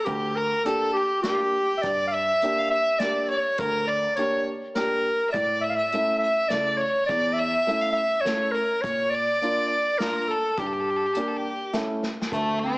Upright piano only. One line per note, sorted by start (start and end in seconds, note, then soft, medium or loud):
0.06 0.50 D2 medium
0.64 0.94 A#3 medium
0.64 0.95 D4 medium
0.64 0.95 G4 medium
1.24 1.53 A#3 medium
1.24 1.54 D4 soft
1.24 1.54 G4 medium
1.83 2.27 G2 medium
2.42 2.71 A#3 medium
2.42 2.72 D4 medium
2.42 2.72 G4 medium
3.00 3.30 A#3 medium
3.00 3.30 D4 medium
3.00 3.31 G4 medium
3.60 4.03 D2 medium
4.17 4.46 A#3 medium
4.17 4.47 D4 medium
4.17 4.47 G4 medium
4.75 5.05 A#3 medium
4.75 5.05 D4 soft
4.75 5.05 G4 medium
5.35 5.78 A2 medium
5.93 6.22 A3 medium
5.93 6.22 C#4 medium
5.93 6.23 E4 medium
6.51 6.80 C#3 soft
6.51 6.80 A3 medium
6.51 6.81 E4 medium
7.10 7.53 E2 medium
7.67 7.96 A3 medium
7.67 7.97 C#4 medium
7.67 7.97 E4 medium
8.25 8.54 A3 medium
8.25 8.55 C#4 soft
8.25 8.55 E4 medium
8.83 9.27 A#2 medium
9.42 9.71 A#3 medium
9.42 9.71 D4 medium
9.42 9.71 F4 medium
9.99 10.29 A#3 soft
9.99 10.29 D4 soft
9.99 10.30 F4 medium
10.59 11.02 G2 medium
11.16 11.45 A#3 medium
11.16 11.45 D4 medium
11.16 11.46 G4 medium
11.74 12.03 A3 medium
11.74 12.03 C#4 medium
11.74 12.04 E4 medium
12.32 12.75 D2 medium